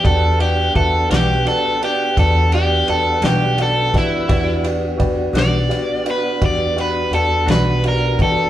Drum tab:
RD |xxxxxxxxxxxx|xxxxxxxxxxxx|
SD |---o-----o-o|---o-----o--|
BD |o-o---o----o|o-o---o----o|